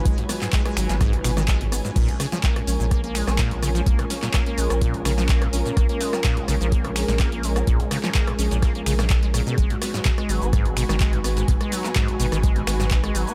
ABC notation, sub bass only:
X:1
M:4/4
L:1/16
Q:1/4=126
K:Bbphr
V:1 name="Sub bass" clef=bass
A,,, z4 z A,,, A,,,3 A,,,4- A,,, z | B,,, z4 z B,,, B,,,4 B,,,4- B,,, | B,,, z4 z B,,, B,,,3 B,,,4 B,,, z | B,,, z4 z B,,, B,,,4 B,,,4- B,,, |
B,,, z4 z B,,, B,,,3 B,,,4- B,,, z | A,,, z4 z A,,, A,,,4 A,,,4- A,,, | A,,, z4 z A,,, A,,,3 A,,,4 A,,, z |]